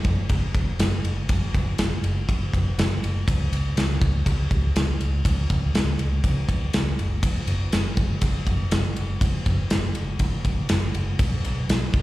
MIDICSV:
0, 0, Header, 1, 3, 480
1, 0, Start_track
1, 0, Tempo, 495050
1, 1255, Time_signature, 4, 2, 24, 8
1, 11657, End_track
2, 0, Start_track
2, 0, Title_t, "Fingered electric bass"
2, 0, Program_c, 0, 33
2, 50, Note_on_c, 0, 30, 93
2, 248, Note_off_c, 0, 30, 0
2, 289, Note_on_c, 0, 30, 94
2, 488, Note_off_c, 0, 30, 0
2, 531, Note_on_c, 0, 30, 90
2, 729, Note_off_c, 0, 30, 0
2, 766, Note_on_c, 0, 30, 114
2, 966, Note_off_c, 0, 30, 0
2, 1013, Note_on_c, 0, 30, 100
2, 1210, Note_off_c, 0, 30, 0
2, 1257, Note_on_c, 0, 30, 104
2, 1453, Note_off_c, 0, 30, 0
2, 1498, Note_on_c, 0, 30, 99
2, 1694, Note_off_c, 0, 30, 0
2, 1737, Note_on_c, 0, 30, 108
2, 1934, Note_off_c, 0, 30, 0
2, 1973, Note_on_c, 0, 30, 83
2, 2171, Note_off_c, 0, 30, 0
2, 2216, Note_on_c, 0, 30, 101
2, 2413, Note_off_c, 0, 30, 0
2, 2460, Note_on_c, 0, 30, 83
2, 2656, Note_off_c, 0, 30, 0
2, 2695, Note_on_c, 0, 30, 115
2, 2892, Note_off_c, 0, 30, 0
2, 2937, Note_on_c, 0, 30, 106
2, 3134, Note_off_c, 0, 30, 0
2, 3177, Note_on_c, 0, 37, 105
2, 3374, Note_off_c, 0, 37, 0
2, 3415, Note_on_c, 0, 37, 98
2, 3612, Note_off_c, 0, 37, 0
2, 3654, Note_on_c, 0, 37, 107
2, 3852, Note_off_c, 0, 37, 0
2, 3893, Note_on_c, 0, 37, 82
2, 4091, Note_off_c, 0, 37, 0
2, 4131, Note_on_c, 0, 37, 92
2, 4330, Note_off_c, 0, 37, 0
2, 4372, Note_on_c, 0, 37, 84
2, 4571, Note_off_c, 0, 37, 0
2, 4609, Note_on_c, 0, 37, 104
2, 4809, Note_off_c, 0, 37, 0
2, 4849, Note_on_c, 0, 37, 98
2, 5049, Note_off_c, 0, 37, 0
2, 5090, Note_on_c, 0, 37, 104
2, 5290, Note_off_c, 0, 37, 0
2, 5333, Note_on_c, 0, 37, 107
2, 5531, Note_off_c, 0, 37, 0
2, 5567, Note_on_c, 0, 37, 119
2, 5768, Note_off_c, 0, 37, 0
2, 5813, Note_on_c, 0, 37, 74
2, 6011, Note_off_c, 0, 37, 0
2, 6052, Note_on_c, 0, 37, 109
2, 6250, Note_off_c, 0, 37, 0
2, 6287, Note_on_c, 0, 37, 97
2, 6487, Note_off_c, 0, 37, 0
2, 6536, Note_on_c, 0, 37, 102
2, 6733, Note_off_c, 0, 37, 0
2, 6777, Note_on_c, 0, 30, 103
2, 7170, Note_off_c, 0, 30, 0
2, 7252, Note_on_c, 0, 30, 115
2, 7450, Note_off_c, 0, 30, 0
2, 7488, Note_on_c, 0, 30, 96
2, 7688, Note_off_c, 0, 30, 0
2, 7728, Note_on_c, 0, 30, 70
2, 7928, Note_off_c, 0, 30, 0
2, 7969, Note_on_c, 0, 30, 111
2, 8168, Note_off_c, 0, 30, 0
2, 8212, Note_on_c, 0, 30, 98
2, 8410, Note_off_c, 0, 30, 0
2, 8448, Note_on_c, 0, 30, 107
2, 8647, Note_off_c, 0, 30, 0
2, 8691, Note_on_c, 0, 30, 93
2, 8889, Note_off_c, 0, 30, 0
2, 8932, Note_on_c, 0, 30, 104
2, 9129, Note_off_c, 0, 30, 0
2, 9176, Note_on_c, 0, 30, 96
2, 9372, Note_off_c, 0, 30, 0
2, 9418, Note_on_c, 0, 30, 106
2, 9613, Note_off_c, 0, 30, 0
2, 9658, Note_on_c, 0, 30, 87
2, 9853, Note_off_c, 0, 30, 0
2, 9889, Note_on_c, 0, 30, 94
2, 10088, Note_off_c, 0, 30, 0
2, 10129, Note_on_c, 0, 30, 93
2, 10328, Note_off_c, 0, 30, 0
2, 10375, Note_on_c, 0, 30, 96
2, 10571, Note_off_c, 0, 30, 0
2, 10615, Note_on_c, 0, 30, 112
2, 10812, Note_off_c, 0, 30, 0
2, 10855, Note_on_c, 0, 35, 114
2, 11051, Note_off_c, 0, 35, 0
2, 11093, Note_on_c, 0, 35, 102
2, 11291, Note_off_c, 0, 35, 0
2, 11333, Note_on_c, 0, 35, 93
2, 11531, Note_off_c, 0, 35, 0
2, 11576, Note_on_c, 0, 35, 91
2, 11657, Note_off_c, 0, 35, 0
2, 11657, End_track
3, 0, Start_track
3, 0, Title_t, "Drums"
3, 44, Note_on_c, 9, 51, 52
3, 47, Note_on_c, 9, 36, 102
3, 140, Note_off_c, 9, 51, 0
3, 144, Note_off_c, 9, 36, 0
3, 285, Note_on_c, 9, 51, 71
3, 288, Note_on_c, 9, 36, 96
3, 382, Note_off_c, 9, 51, 0
3, 385, Note_off_c, 9, 36, 0
3, 529, Note_on_c, 9, 36, 95
3, 531, Note_on_c, 9, 51, 57
3, 626, Note_off_c, 9, 36, 0
3, 628, Note_off_c, 9, 51, 0
3, 770, Note_on_c, 9, 51, 82
3, 778, Note_on_c, 9, 38, 116
3, 867, Note_off_c, 9, 51, 0
3, 875, Note_off_c, 9, 38, 0
3, 1014, Note_on_c, 9, 51, 51
3, 1111, Note_off_c, 9, 51, 0
3, 1251, Note_on_c, 9, 51, 89
3, 1254, Note_on_c, 9, 36, 119
3, 1348, Note_off_c, 9, 51, 0
3, 1351, Note_off_c, 9, 36, 0
3, 1498, Note_on_c, 9, 36, 90
3, 1499, Note_on_c, 9, 51, 53
3, 1595, Note_off_c, 9, 36, 0
3, 1595, Note_off_c, 9, 51, 0
3, 1730, Note_on_c, 9, 51, 78
3, 1736, Note_on_c, 9, 38, 106
3, 1827, Note_off_c, 9, 51, 0
3, 1833, Note_off_c, 9, 38, 0
3, 1975, Note_on_c, 9, 51, 52
3, 2072, Note_off_c, 9, 51, 0
3, 2217, Note_on_c, 9, 36, 85
3, 2218, Note_on_c, 9, 51, 71
3, 2314, Note_off_c, 9, 36, 0
3, 2315, Note_off_c, 9, 51, 0
3, 2458, Note_on_c, 9, 36, 87
3, 2464, Note_on_c, 9, 51, 53
3, 2555, Note_off_c, 9, 36, 0
3, 2561, Note_off_c, 9, 51, 0
3, 2702, Note_on_c, 9, 51, 69
3, 2710, Note_on_c, 9, 38, 119
3, 2799, Note_off_c, 9, 51, 0
3, 2807, Note_off_c, 9, 38, 0
3, 2945, Note_on_c, 9, 51, 50
3, 3042, Note_off_c, 9, 51, 0
3, 3177, Note_on_c, 9, 36, 104
3, 3180, Note_on_c, 9, 51, 91
3, 3274, Note_off_c, 9, 36, 0
3, 3276, Note_off_c, 9, 51, 0
3, 3420, Note_on_c, 9, 51, 55
3, 3517, Note_off_c, 9, 51, 0
3, 3657, Note_on_c, 9, 51, 80
3, 3663, Note_on_c, 9, 38, 101
3, 3754, Note_off_c, 9, 51, 0
3, 3760, Note_off_c, 9, 38, 0
3, 3893, Note_on_c, 9, 36, 102
3, 3893, Note_on_c, 9, 51, 52
3, 3990, Note_off_c, 9, 36, 0
3, 3990, Note_off_c, 9, 51, 0
3, 4132, Note_on_c, 9, 36, 78
3, 4135, Note_on_c, 9, 51, 74
3, 4229, Note_off_c, 9, 36, 0
3, 4232, Note_off_c, 9, 51, 0
3, 4372, Note_on_c, 9, 36, 83
3, 4373, Note_on_c, 9, 51, 46
3, 4469, Note_off_c, 9, 36, 0
3, 4470, Note_off_c, 9, 51, 0
3, 4613, Note_on_c, 9, 51, 70
3, 4621, Note_on_c, 9, 38, 115
3, 4710, Note_off_c, 9, 51, 0
3, 4718, Note_off_c, 9, 38, 0
3, 4853, Note_on_c, 9, 51, 47
3, 4950, Note_off_c, 9, 51, 0
3, 5090, Note_on_c, 9, 36, 102
3, 5094, Note_on_c, 9, 51, 92
3, 5187, Note_off_c, 9, 36, 0
3, 5191, Note_off_c, 9, 51, 0
3, 5332, Note_on_c, 9, 51, 54
3, 5333, Note_on_c, 9, 36, 87
3, 5429, Note_off_c, 9, 51, 0
3, 5430, Note_off_c, 9, 36, 0
3, 5573, Note_on_c, 9, 51, 70
3, 5579, Note_on_c, 9, 38, 107
3, 5670, Note_off_c, 9, 51, 0
3, 5676, Note_off_c, 9, 38, 0
3, 5808, Note_on_c, 9, 51, 50
3, 5905, Note_off_c, 9, 51, 0
3, 6049, Note_on_c, 9, 36, 82
3, 6049, Note_on_c, 9, 51, 74
3, 6146, Note_off_c, 9, 36, 0
3, 6146, Note_off_c, 9, 51, 0
3, 6289, Note_on_c, 9, 36, 80
3, 6290, Note_on_c, 9, 51, 56
3, 6386, Note_off_c, 9, 36, 0
3, 6387, Note_off_c, 9, 51, 0
3, 6530, Note_on_c, 9, 51, 74
3, 6537, Note_on_c, 9, 38, 125
3, 6627, Note_off_c, 9, 51, 0
3, 6634, Note_off_c, 9, 38, 0
3, 6777, Note_on_c, 9, 51, 43
3, 6874, Note_off_c, 9, 51, 0
3, 7009, Note_on_c, 9, 36, 109
3, 7010, Note_on_c, 9, 51, 101
3, 7106, Note_off_c, 9, 36, 0
3, 7106, Note_off_c, 9, 51, 0
3, 7246, Note_on_c, 9, 51, 53
3, 7343, Note_off_c, 9, 51, 0
3, 7490, Note_on_c, 9, 51, 75
3, 7496, Note_on_c, 9, 38, 105
3, 7587, Note_off_c, 9, 51, 0
3, 7593, Note_off_c, 9, 38, 0
3, 7727, Note_on_c, 9, 51, 52
3, 7730, Note_on_c, 9, 36, 91
3, 7824, Note_off_c, 9, 51, 0
3, 7827, Note_off_c, 9, 36, 0
3, 7965, Note_on_c, 9, 51, 81
3, 7968, Note_on_c, 9, 36, 93
3, 8062, Note_off_c, 9, 51, 0
3, 8065, Note_off_c, 9, 36, 0
3, 8208, Note_on_c, 9, 51, 53
3, 8209, Note_on_c, 9, 36, 81
3, 8305, Note_off_c, 9, 51, 0
3, 8306, Note_off_c, 9, 36, 0
3, 8449, Note_on_c, 9, 51, 72
3, 8457, Note_on_c, 9, 38, 127
3, 8546, Note_off_c, 9, 51, 0
3, 8554, Note_off_c, 9, 38, 0
3, 8691, Note_on_c, 9, 51, 48
3, 8788, Note_off_c, 9, 51, 0
3, 8931, Note_on_c, 9, 36, 113
3, 8934, Note_on_c, 9, 51, 89
3, 9028, Note_off_c, 9, 36, 0
3, 9031, Note_off_c, 9, 51, 0
3, 9172, Note_on_c, 9, 51, 52
3, 9174, Note_on_c, 9, 36, 87
3, 9269, Note_off_c, 9, 51, 0
3, 9271, Note_off_c, 9, 36, 0
3, 9409, Note_on_c, 9, 51, 69
3, 9415, Note_on_c, 9, 38, 114
3, 9506, Note_off_c, 9, 51, 0
3, 9512, Note_off_c, 9, 38, 0
3, 9646, Note_on_c, 9, 51, 52
3, 9743, Note_off_c, 9, 51, 0
3, 9883, Note_on_c, 9, 51, 67
3, 9889, Note_on_c, 9, 36, 88
3, 9980, Note_off_c, 9, 51, 0
3, 9986, Note_off_c, 9, 36, 0
3, 10129, Note_on_c, 9, 51, 55
3, 10130, Note_on_c, 9, 36, 82
3, 10226, Note_off_c, 9, 51, 0
3, 10227, Note_off_c, 9, 36, 0
3, 10364, Note_on_c, 9, 51, 83
3, 10372, Note_on_c, 9, 38, 127
3, 10461, Note_off_c, 9, 51, 0
3, 10469, Note_off_c, 9, 38, 0
3, 10612, Note_on_c, 9, 51, 47
3, 10709, Note_off_c, 9, 51, 0
3, 10851, Note_on_c, 9, 51, 103
3, 10853, Note_on_c, 9, 36, 124
3, 10948, Note_off_c, 9, 51, 0
3, 10950, Note_off_c, 9, 36, 0
3, 11098, Note_on_c, 9, 51, 55
3, 11195, Note_off_c, 9, 51, 0
3, 11339, Note_on_c, 9, 51, 78
3, 11345, Note_on_c, 9, 38, 114
3, 11436, Note_off_c, 9, 51, 0
3, 11442, Note_off_c, 9, 38, 0
3, 11573, Note_on_c, 9, 51, 49
3, 11575, Note_on_c, 9, 36, 100
3, 11657, Note_off_c, 9, 36, 0
3, 11657, Note_off_c, 9, 51, 0
3, 11657, End_track
0, 0, End_of_file